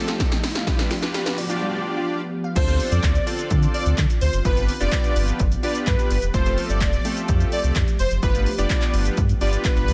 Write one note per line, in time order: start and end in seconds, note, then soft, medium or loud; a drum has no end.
0.00 2.52 F3 medium
0.00 0.65 A3 medium
0.00 0.32 C4 medium
0.00 0.32 F4 medium
0.00 0.32 G4 medium
0.00 2.52 G4 medium
0.00 0.32 A4 medium
0.00 riser medium
0.08 0.19 F4 medium
0.08 snare loud
0.08 closed hi-hat medium
0.08 shaker medium
0.20 kick loud
0.20 snare loud
0.20 closed hi-hat medium
0.20 tambourine medium
0.20 shaker medium
0.32 snare loud
0.32 closed hi-hat medium
0.32 shaker medium
0.43 snare loud
0.43 open hi-hat medium
0.43 shaker medium
0.55 0.66 F5 medium
0.55 snare loud
0.55 closed hi-hat medium
0.55 shaker medium
0.67 0.78 G3 loud
0.67 2.54 B3 medium
0.67 0.94 D4 medium
0.67 0.94 F4 medium
0.67 0.94 G4 medium
0.67 0.94 B4 loud
0.67 kick loud
0.67 snare loud
0.67 closed hi-hat medium
0.67 tambourine soft
0.67 shaker medium
0.79 0.90 B3 medium
0.79 snare loud
0.79 closed hi-hat medium
0.79 shaker medium
0.91 1.02 D4 medium
0.91 snare loud
0.91 open hi-hat medium
0.91 tambourine medium
0.91 shaker medium
1.02 1.38 D4 medium
1.02 1.38 F4 medium
1.02 1.14 F4 medium
1.02 1.38 G4 medium
1.02 1.38 B4 loud
1.02 snare loud
1.02 closed hi-hat medium
1.02 shaker medium
1.14 1.25 G4 medium
1.14 snare loud
1.14 closed hi-hat medium
1.14 tambourine medium
1.14 shaker medium
1.26 1.37 B4 medium
1.26 snare loud
1.26 closed hi-hat medium
1.26 shaker medium
1.38 1.49 D5 loud
1.38 open hi-hat medium
1.38 tambourine soft
1.38 shaker medium
1.49 2.21 D4 medium
1.49 2.21 F4 medium
1.49 2.21 G4 medium
1.49 2.21 D5 loud
1.49 1.61 F5 medium
1.49 closed hi-hat medium
1.49 shaker medium
1.62 1.73 G3 medium
1.73 1.84 B3 medium
1.97 2.08 F4 medium
2.44 2.55 F5 medium
2.56 2.80 D2 loud
2.56 4.43 D3 medium
2.56 2.65 C4 medium
2.56 4.43 C4 medium
2.56 2.65 D4 medium
2.56 2.65 F4 medium
2.56 4.43 F4 medium
2.56 2.65 A4 medium
2.56 2.74 C5 loud
2.56 2.65 C5 medium
2.56 kick loud
2.56 closed hi-hat medium
2.56 crash loud
2.56 shaker medium
2.67 3.12 C4 medium
2.67 3.12 D4 medium
2.67 3.12 F4 medium
2.67 3.12 A4 medium
2.67 3.12 C5 medium
2.67 closed hi-hat medium
2.67 shaker medium
2.80 open hi-hat medium
2.80 shaker medium
2.91 3.00 F2 loud
2.91 3.25 D5 medium
2.91 closed hi-hat soft
2.91 shaker medium
3.03 3.19 D2 loud
3.03 kick loud
3.03 clap loud
3.03 closed hi-hat medium
3.03 shaker medium
3.15 closed hi-hat medium
3.15 shaker medium
3.26 3.98 C4 medium
3.26 3.98 D4 medium
3.26 3.98 F4 medium
3.26 3.98 A4 medium
3.26 3.98 D5 medium
3.26 open hi-hat medium
3.26 shaker medium
3.39 closed hi-hat medium
3.39 shaker medium
3.50 3.67 D3 loud
3.50 kick loud
3.50 closed hi-hat medium
3.50 shaker medium
3.63 closed hi-hat soft
3.63 shaker medium
3.74 3.83 D5 medium
3.74 open hi-hat medium
3.74 shaker soft
3.86 3.94 D2 medium
3.86 closed hi-hat medium
3.86 shaker medium
3.98 4.06 D3 loud
3.98 kick loud
3.98 clap loud
3.98 closed hi-hat medium
3.98 shaker medium
4.10 closed hi-hat medium
4.10 shaker medium
4.21 4.29 D2 medium
4.21 4.30 C5 medium
4.21 open hi-hat medium
4.21 shaker medium
4.33 4.41 F#1 loud
4.33 closed hi-hat medium
4.33 shaker medium
4.45 4.69 G1 loud
4.45 6.32 F3 medium
4.45 4.72 B3 medium
4.45 6.32 B3 medium
4.45 4.72 D4 medium
4.45 4.72 F4 medium
4.45 4.72 G4 medium
4.45 9.93 G4 medium
4.45 4.63 B4 loud
4.45 4.72 B4 medium
4.45 kick loud
4.45 closed hi-hat medium
4.45 shaker medium
4.57 closed hi-hat medium
4.57 shaker medium
4.69 open hi-hat medium
4.69 shaker medium
4.80 4.89 F1 medium
4.80 5.43 B3 medium
4.80 5.43 D4 medium
4.80 5.43 F4 medium
4.80 5.43 G4 medium
4.80 5.43 B4 medium
4.80 5.14 D5 medium
4.80 closed hi-hat medium
4.80 shaker medium
4.92 kick loud
4.92 clap loud
4.92 closed hi-hat medium
4.92 shaker medium
5.04 closed hi-hat medium
5.04 shaker medium
5.16 5.32 G1 medium
5.16 open hi-hat medium
5.16 shaker medium
5.28 closed hi-hat medium
5.28 shaker medium
5.40 5.56 G1 loud
5.40 kick loud
5.40 closed hi-hat medium
5.40 shaker medium
5.52 closed hi-hat medium
5.52 shaker soft
5.63 6.16 B3 medium
5.63 6.16 D4 medium
5.63 6.17 F4 medium
5.63 6.17 G4 medium
5.63 6.17 B4 medium
5.63 5.72 D5 medium
5.63 open hi-hat medium
5.63 shaker medium
5.75 closed hi-hat medium
5.75 shaker medium
5.87 5.95 G2 loud
5.87 6.20 B4 medium
5.87 kick loud
5.87 clap loud
5.87 closed hi-hat medium
5.87 shaker medium
5.99 closed hi-hat medium
5.99 shaker medium
6.11 6.18 G1 loud
6.11 open hi-hat medium
6.11 shaker medium
6.22 6.30 E1 medium
6.22 closed hi-hat medium
6.22 shaker medium
6.34 6.58 F1 loud
6.34 9.93 F3 medium
6.34 6.43 A3 medium
6.34 8.21 A3 medium
6.34 6.43 C4 medium
6.34 6.43 F4 medium
6.34 6.43 G4 medium
6.34 6.43 A4 medium
6.34 6.52 C5 loud
6.34 kick loud
6.34 closed hi-hat medium
6.34 shaker medium
6.46 6.90 A3 medium
6.46 6.90 C4 medium
6.46 6.90 F4 medium
6.46 6.90 G4 medium
6.46 6.91 A4 medium
6.46 closed hi-hat medium
6.46 shaker medium
6.58 open hi-hat medium
6.58 shaker medium
6.69 6.83 G1 loud
6.69 7.03 D5 medium
6.69 closed hi-hat medium
6.69 shaker medium
6.81 6.97 F1 loud
6.81 kick loud
6.81 clap loud
6.81 closed hi-hat medium
6.81 shaker medium
6.93 closed hi-hat medium
6.93 shaker medium
7.05 7.76 A3 medium
7.05 7.76 C4 medium
7.05 7.76 F4 medium
7.05 7.76 G4 medium
7.05 7.76 A4 medium
7.05 open hi-hat medium
7.05 shaker medium
7.17 closed hi-hat medium
7.17 shaker medium
7.28 7.45 F2 loud
7.28 kick loud
7.28 closed hi-hat medium
7.28 shaker medium
7.40 closed hi-hat soft
7.40 shaker soft
7.52 7.61 D5 medium
7.52 open hi-hat medium
7.52 shaker medium
7.64 7.72 C2 loud
7.64 closed hi-hat medium
7.64 shaker medium
7.76 7.84 F2 loud
7.76 kick loud
7.76 clap loud
7.76 closed hi-hat medium
7.76 shaker medium
7.88 closed hi-hat medium
7.88 shaker medium
7.99 8.07 F1 loud
7.99 8.08 C5 medium
7.99 open hi-hat medium
7.99 shaker medium
8.11 8.19 F#1 loud
8.11 closed hi-hat medium
8.11 shaker medium
8.23 8.47 G1 loud
8.23 8.50 B3 medium
8.23 9.93 B3 medium
8.23 8.50 D4 medium
8.23 8.50 F4 medium
8.23 8.50 G4 medium
8.23 8.50 B4 medium
8.23 8.41 B4 loud
8.23 kick loud
8.23 closed hi-hat medium
8.23 shaker medium
8.35 closed hi-hat medium
8.35 shaker medium
8.46 open hi-hat medium
8.46 shaker medium
8.58 8.66 F1 loud
8.58 9.21 B3 medium
8.58 9.21 D4 medium
8.58 9.21 F4 medium
8.58 9.21 G4 medium
8.58 9.21 B4 medium
8.58 8.92 D5 medium
8.58 closed hi-hat medium
8.58 shaker medium
8.70 kick loud
8.70 clap loud
8.70 closed hi-hat medium
8.70 shaker medium
8.82 clap medium
8.82 closed hi-hat medium
8.82 shaker medium
8.94 9.10 G1 loud
8.94 open hi-hat medium
8.94 shaker medium
9.06 closed hi-hat medium
9.06 shaker medium
9.17 9.34 G2 loud
9.17 kick loud
9.17 closed hi-hat medium
9.17 shaker medium
9.29 closed hi-hat medium
9.29 shaker soft
9.41 9.57 G1 medium
9.41 9.93 B3 medium
9.41 9.93 D4 medium
9.41 9.93 F4 medium
9.41 9.93 G4 medium
9.41 9.93 B4 medium
9.41 9.50 D5 medium
9.41 open hi-hat medium
9.41 shaker medium
9.53 closed hi-hat medium
9.53 shaker medium
9.65 9.70 G1 medium
9.65 9.93 B4 medium
9.65 kick loud
9.65 clap loud
9.65 closed hi-hat medium
9.65 shaker medium
9.76 9.90 G1 loud
9.76 closed hi-hat medium
9.76 shaker medium
9.88 9.93 G2 loud
9.88 open hi-hat medium
9.88 shaker medium